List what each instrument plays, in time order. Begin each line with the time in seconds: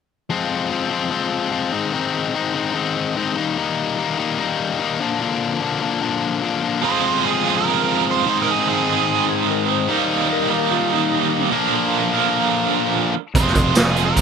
0.30 distorted electric guitar F3 G#3 C4 F4
0.70 distorted electric guitar F3 G#3 C4 F4
0.89 distorted electric guitar F3 G#3 C4 F4
1.10 distorted electric guitar F3 G#3 C4 F4
1.51 distorted electric guitar F3 G#3 C4 F4
1.72 distorted electric guitar G#2 D#3 G#3 C4 D#4
1.92 distorted electric guitar G#2 D#3 G#3 C4 D#4
2.34 distorted electric guitar G#2 D#3 G#3 C4 D#4
2.55 distorted electric guitar G#2 D#3 G#3 C4 D#4
2.74 distorted electric guitar G#2 D#3 G#3 C4 D#4
3.16 distorted electric guitar G#2 D#3 G#3 C4 D#4
3.36 distorted electric guitar D#3 G3 A#3 D#4
3.57 distorted electric guitar D#3 G3 A#3 D#4
3.98 distorted electric guitar D#3 G3 A#3 D#4
4.18 distorted electric guitar D#3 G3 A#3 D#4
4.39 distorted electric guitar D#3 G3 A#3 D#4
4.79 distorted electric guitar D#3 G3 A#3 D#4
5.00 distorted electric guitar A#2 D3 F3 A#3 D4
5.20 distorted electric guitar A#2 D3 F3 A#3 D4
5.60 distorted electric guitar A#2 D3 F3 A#3 D4
5.82 distorted electric guitar A#2 D3 F3 A#3 D4
6.01 distorted electric guitar A#2 D3 F3 A#3 D4
6.41 distorted electric guitar A#2 D3 F3 A#3 D4
6.62 distorted electric guitar A#2 D3 F3 A#3 D4
6.81 distorted electric guitar F3 G#3 C4 F4, overdriven electric guitar F3 C4 F4 G#4, lead electric guitar C5
7.25 lead electric guitar G#4
7.45 overdriven electric guitar F3 C4 F4 G#4
7.57 lead electric guitar A#4
8.11 lead electric guitar C5
8.26 distorted electric guitar G#2 D#3 G#3 C4 D#4, overdriven electric guitar G#2 D#3 G#3 C4 D#4 G#4
8.42 lead electric guitar A#4
8.51 lead electric guitar G#4
8.69 lead electric guitar G#4
8.87 overdriven electric guitar G#2 D#3 G#3 C4 D#4 G#4
9.29 electric slide guitar G#4
9.50 electric slide guitar A#4
9.70 electric slide guitar C5
9.88 overdriven electric guitar D#3 G3 A#3 D#4 G4, distorted electric guitar D#3 G3 A#3 D#4
10.32 electric slide guitar A#4
10.48 overdriven electric guitar D#3 G3 A#3 D#4 G4
10.53 electric slide guitar A#4
10.71 electric slide guitar F4
10.93 electric slide guitar D#4
11.50 overdriven electric guitar A#2 D3 F3 A#3 D4 A#4, distorted electric guitar A#2 F3 A#3 D4
12.12 overdriven electric guitar A#2 D3 F3 A#3 D4 A#4
13.35 picked electric bass F1, distorted electric guitar F2 C3 F3 G#3 C4, overdriven electric guitar F3 C4 F4, lead electric guitar C5, kick, closed hi-hat
13.39 overdriven electric guitar G#4
13.47 snare
13.55 kick, closed hi-hat
13.75 picked electric bass F1, lead electric guitar G#4, snare, closed hi-hat, tambourine
13.96 overdriven electric guitar C4 F4 G#4, closed hi-hat
14.00 overdriven electric guitar F3
14.05 lead electric guitar A#4
14.16 picked electric bass F1, kick, closed hi-hat